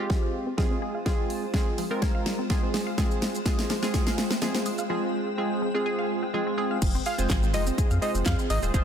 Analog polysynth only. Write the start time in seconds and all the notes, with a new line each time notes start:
0.00 G#3 C4 F4 G4
0.57 G#3 C4 F4 G#4
1.06 G#3 C4 F4 G#4
1.54 G#3 C4 F4 G#4
1.91 G#3 C4 F4 A#4
2.50 G#3 C4 F4 G#4
2.98 G#3 C4 F4 G#4
3.46 G#3 C4 F4 G#4
3.82 G#3 C4 F4 G#4
4.42 G#3 C4 F4 G#4
4.89 G#3 C4 F4 G#4
5.38 G#3 C4 F4 G#4
5.74 G#3 C4 F4 G#4
6.33 G#3 C4 F4 G#4
6.57 G#3 C4 F4 G#4
7.18 G#3 C4 F4 G#4 C5
7.53 G#3 C4 F4 G#4 C5
8.02 G#3 C4 F4 G#4 C5
8.62 G#3 C4 F4 G#4 C5
8.74 G#3 C4 F4 G#4 C5